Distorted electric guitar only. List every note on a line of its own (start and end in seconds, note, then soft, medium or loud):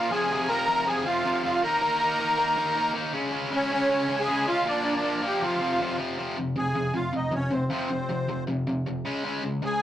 0.00 0.10 A#3 medium
0.10 0.29 F2 medium
0.10 0.30 C3 loud
0.10 0.30 F3 loud
0.30 0.48 F2 medium
0.30 0.48 C3 medium
0.30 0.48 F3 medium
0.49 0.67 F2 loud
0.49 0.67 C3 loud
0.49 0.67 F3 loud
0.68 0.85 F2 medium
0.68 0.86 C3 medium
0.68 0.86 F3 medium
0.86 1.04 F2 loud
0.86 1.04 C3 loud
0.86 1.05 F3 loud
1.05 1.24 F2 medium
1.05 1.24 C3 medium
1.05 1.24 F3 medium
1.25 1.43 F2 medium
1.25 1.43 C3 loud
1.25 1.44 F3 loud
1.44 1.62 F2 medium
1.44 1.62 C3 medium
1.44 1.62 F3 loud
1.63 1.80 D#3 medium
1.63 1.81 A#3 loud
1.63 1.81 D#4 loud
1.81 1.99 D#3 loud
1.81 1.99 A#3 loud
1.81 2.00 D#4 loud
2.00 2.18 D#3 loud
2.00 2.19 A#3 loud
2.00 2.19 D#4 loud
2.19 2.37 D#3 medium
2.19 2.37 A#3 loud
2.19 2.38 D#4 medium
2.38 2.55 D#3 loud
2.38 2.56 A#3 loud
2.38 2.56 D#4 loud
2.57 2.75 D#3 medium
2.57 2.75 A#3 medium
2.57 2.76 D#4 medium
2.76 2.94 D#3 loud
2.76 2.94 A#3 loud
2.76 2.94 D#4 loud
2.95 3.13 D#3 medium
2.95 3.13 A#3 medium
2.95 3.14 D#4 loud
3.13 3.31 C#3 medium
3.13 3.31 G#3 loud
3.13 3.32 C#4 loud
3.32 3.50 C#3 medium
3.32 3.51 G#3 loud
3.32 3.51 C#4 loud
3.51 3.69 C#3 loud
3.51 3.70 G#3 loud
3.51 3.70 C#4 loud
3.70 3.88 C#3 medium
3.70 3.88 G#3 medium
3.70 3.89 C#4 loud
3.89 4.07 C#3 loud
3.89 4.08 G#3 loud
3.89 4.08 C#4 loud
4.08 4.27 C#3 medium
4.08 4.27 G#3 medium
4.08 4.28 C#4 loud
4.28 4.45 C#3 loud
4.28 4.46 G#3 loud
4.28 4.47 C#4 loud
4.46 4.65 C#3 medium
4.46 4.65 G#3 medium
4.46 4.66 C#4 medium
4.66 4.83 A#2 loud
4.66 4.84 F3 loud
4.66 4.84 A#3 medium
4.84 5.02 A#2 medium
4.84 5.02 F3 loud
4.84 5.03 A#3 loud
5.03 5.21 A#2 loud
5.03 5.22 F3 loud
5.03 5.22 A#3 loud
5.22 5.41 A#2 medium
5.22 5.41 F3 loud
5.22 5.42 A#3 loud
5.41 5.60 F2 loud
5.41 5.61 C3 loud
5.41 5.61 F3 loud
5.61 5.79 F2 medium
5.61 5.79 C3 medium
5.61 5.80 F3 loud
5.80 5.98 F2 loud
5.80 5.98 C3 loud
5.80 5.98 F3 loud
5.99 6.17 F2 medium
5.99 6.17 C3 loud
5.99 6.18 F3 loud
6.18 6.36 F2 medium
6.18 6.36 C3 medium
6.18 6.37 F3 medium
6.37 6.55 F2 medium
6.37 6.55 C3 medium
6.56 6.74 F2 medium
6.56 6.74 C3 medium
6.75 6.92 F2 medium
6.75 6.93 C3 medium
6.94 7.12 F2 medium
6.94 7.12 C3 medium
7.13 7.30 F2 medium
7.13 7.31 C3 medium
7.32 7.49 F2 medium
7.32 7.50 C3 medium
7.51 7.69 F2 medium
7.51 7.69 C3 medium
7.70 7.89 F2 medium
7.70 7.89 C3 medium
7.70 7.89 F3 medium
7.90 8.08 F2 medium
7.90 8.08 C3 medium
8.09 8.27 F2 medium
8.09 8.27 C3 medium
8.29 8.46 F2 medium
8.29 8.46 C3 medium
8.47 8.65 F2 medium
8.47 8.65 C3 medium
8.67 8.84 F2 medium
8.67 8.84 C3 medium
8.86 9.03 F2 medium
8.86 9.04 C3 medium
9.05 9.23 C#3 medium
9.05 9.23 G#3 medium
9.05 9.23 C#4 medium
9.24 9.42 C#3 medium
9.24 9.42 G#3 medium
9.24 9.42 C#4 medium
9.43 9.60 C#3 medium
9.43 9.61 G#3 medium
9.62 9.79 C#3 medium
9.62 9.80 G#3 medium